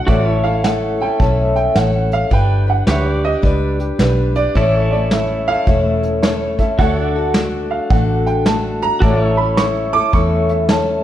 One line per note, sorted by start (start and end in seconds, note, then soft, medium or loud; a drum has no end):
0.07 1.08 A1 medium
0.07 0.44 A2 medium
0.07 0.45 E3 medium
0.07 0.44 A3 medium
0.07 0.44 C#4 medium
0.07 0.43 E4 medium
0.07 0.32 F#4 medium
0.07 2.29 A4 medium
0.07 0.42 A4 medium
0.07 0.29 D5 medium
0.07 0.43 E5 medium
0.07 kick loud
0.07 closed hi-hat medium
0.29 2.29 E4 medium
0.29 2.30 C#5 medium
0.44 0.63 A3 soft
0.44 0.64 C#4 soft
0.44 0.64 E4 soft
0.44 0.64 A4 medium
0.44 0.63 F5 medium
0.64 1.00 A3 medium
0.64 1.00 C#4 medium
0.64 1.01 E4 medium
0.64 0.99 A4 medium
0.64 0.99 F#5 medium
0.64 snare loud
0.64 closed hi-hat medium
1.00 1.20 A3 soft
1.00 1.20 C#4 soft
1.00 1.21 E4 medium
1.00 1.20 A4 medium
1.00 1.20 G5 medium
1.20 1.68 B1 medium
1.20 1.76 A2 medium
1.20 1.76 E3 medium
1.20 1.76 A3 medium
1.20 1.76 C#4 medium
1.20 1.77 E4 medium
1.20 1.77 A4 medium
1.20 1.55 A5 medium
1.20 kick loud
1.20 closed hi-hat medium
1.56 1.75 G5 medium
1.56 closed hi-hat medium
1.75 2.23 A1 medium
1.75 2.30 A3 medium
1.75 2.31 C#4 medium
1.75 2.32 E4 medium
1.75 2.32 A4 medium
1.75 2.11 F#5 medium
1.75 snare loud
1.75 closed hi-hat medium
2.11 2.32 F5 loud
2.11 closed hi-hat medium
2.30 2.81 G1 medium
2.30 2.67 G3 medium
2.30 2.68 D4 medium
2.30 2.67 G4 medium
2.30 2.66 B4 medium
2.30 2.67 G5 loud
2.30 kick loud
2.30 closed hi-hat medium
2.67 2.88 D4 soft
2.67 2.88 G4 soft
2.67 2.87 B4 medium
2.67 2.88 F#5 medium
2.87 3.35 D2 medium
2.87 3.24 G3 medium
2.87 3.24 D4 medium
2.87 4.54 G4 medium
2.87 3.23 G4 medium
2.87 4.54 B4 medium
2.87 3.22 B4 medium
2.87 3.10 C#5 medium
2.87 3.24 E5 medium
2.87 snare loud
2.87 closed hi-hat medium
3.10 4.55 D5 medium
3.24 3.42 D4 soft
3.24 3.42 G4 medium
3.24 3.43 B4 soft
3.24 3.44 D#5 loud
3.42 3.91 C#2 medium
3.42 3.99 G3 medium
3.42 3.99 D4 medium
3.42 4.00 G4 medium
3.42 4.00 B4 medium
3.42 3.79 D5 medium
3.42 kick loud
3.42 closed hi-hat medium
3.80 3.99 G4 medium
3.80 closed hi-hat medium
3.99 4.47 B1 medium
3.99 4.36 G3 medium
3.99 4.37 D4 medium
3.99 4.35 G4 medium
3.99 4.35 B4 medium
3.99 4.34 B4 medium
3.99 snare loud
3.99 closed hi-hat medium
4.35 4.56 D4 soft
4.35 4.56 G4 soft
4.35 4.55 B4 medium
4.35 4.55 D5 loud
4.35 closed hi-hat medium
4.55 5.55 A1 medium
4.55 4.91 A2 medium
4.55 4.92 E3 medium
4.55 4.92 A3 medium
4.55 4.92 C#4 medium
4.55 6.77 E4 medium
4.55 4.92 E4 medium
4.55 6.78 A4 medium
4.55 4.91 A4 medium
4.55 4.90 C#5 medium
4.55 kick loud
4.55 closed hi-hat medium
4.59 4.79 D5 medium
4.79 6.79 C#5 medium
4.91 5.12 E4 medium
4.91 5.12 A4 medium
4.91 5.10 D5 medium
4.95 5.11 A3 soft
4.95 5.12 C#4 soft
5.11 5.48 A3 medium
5.11 5.48 C#4 medium
5.11 5.47 E4 medium
5.11 5.47 A4 medium
5.11 5.46 E5 medium
5.11 snare loud
5.11 closed hi-hat medium
5.48 5.67 A3 soft
5.48 5.67 C#4 soft
5.48 5.67 E4 medium
5.48 5.67 A4 medium
5.48 5.67 F5 loud
5.67 6.67 E1 medium
5.67 6.23 A2 medium
5.67 6.23 E3 medium
5.67 6.22 A3 medium
5.67 6.22 C#4 medium
5.67 6.23 E4 medium
5.67 6.24 A4 medium
5.67 6.02 E5 medium
5.67 kick loud
5.67 closed hi-hat medium
6.03 6.22 A4 medium
6.03 closed hi-hat medium
6.22 6.59 A3 medium
6.22 6.59 C#4 medium
6.22 6.59 E4 medium
6.22 6.58 A4 medium
6.22 6.58 C#5 medium
6.22 snare loud
6.22 closed hi-hat medium
6.59 6.79 A3 soft
6.59 6.79 C#4 soft
6.59 6.80 E4 medium
6.59 6.79 A4 soft
6.59 6.79 E5 medium
6.59 kick medium
6.59 closed hi-hat medium
6.79 7.78 D2 medium
6.79 7.15 D3 medium
6.79 7.15 A3 medium
6.79 7.15 D4 medium
6.79 9.00 F#4 medium
6.79 7.15 F#4 medium
6.79 9.00 A4 medium
6.79 7.14 A4 medium
6.79 7.01 C#5 medium
6.79 7.31 F#5 medium
6.79 kick loud
6.79 closed hi-hat medium
7.01 9.01 D5 medium
7.15 7.34 D4 soft
7.15 7.35 F#4 soft
7.15 7.35 A4 medium
7.34 7.91 A3 medium
7.34 7.90 D4 medium
7.34 7.91 F#4 medium
7.34 7.92 A4 medium
7.34 snare loud
7.34 closed hi-hat medium
7.71 7.90 F5 medium
7.90 8.90 A1 medium
7.90 8.47 D3 medium
7.90 8.46 A3 medium
7.90 8.46 D4 medium
7.90 8.47 F#4 medium
7.90 8.48 A4 medium
7.90 8.25 F#5 medium
7.90 kick loud
7.90 closed hi-hat medium
8.27 8.46 G5 medium
8.27 closed hi-hat medium
8.46 9.03 A3 medium
8.46 9.03 D4 medium
8.46 9.03 F#4 medium
8.46 9.04 A4 medium
8.46 8.81 A5 medium
8.46 snare loud
8.46 closed hi-hat medium
8.82 9.02 A#5 loud
8.82 closed hi-hat medium
9.00 10.02 A1 medium
9.00 9.38 A2 medium
9.00 9.39 E3 medium
9.00 9.39 A3 medium
9.00 9.38 C#4 medium
9.00 9.38 E4 medium
9.00 9.25 F#4 medium
9.00 11.04 A4 medium
9.00 9.37 A4 medium
9.00 9.23 D5 medium
9.00 9.37 A5 medium
9.00 kick loud
9.00 closed hi-hat medium
9.23 11.04 E4 medium
9.23 11.04 C#5 medium
9.37 9.57 A3 soft
9.37 9.59 C#4 soft
9.37 9.58 E4 soft
9.37 9.58 A4 soft
9.37 9.57 B5 medium
9.57 9.94 A3 medium
9.57 9.95 C#4 medium
9.57 9.94 E4 medium
9.57 9.93 A4 medium
9.57 9.93 C#6 medium
9.57 snare loud
9.57 closed hi-hat medium
9.93 10.12 A3 soft
9.93 10.13 C#4 soft
9.93 10.13 E4 medium
9.93 10.14 A4 medium
9.93 10.13 D6 loud
10.13 11.04 E2 medium
10.13 10.69 A2 medium
10.13 10.69 E3 medium
10.13 10.69 A3 medium
10.13 10.69 C#4 medium
10.13 10.70 E4 medium
10.13 10.72 A4 medium
10.13 10.49 C#6 medium
10.13 kick loud
10.13 closed hi-hat medium
10.49 10.69 E5 medium
10.49 closed hi-hat medium
10.69 11.04 A3 medium
10.69 11.04 C#4 medium
10.69 11.04 E4 medium
10.69 11.03 A4 medium
10.69 11.04 A5 medium
10.69 snare loud
10.69 closed hi-hat medium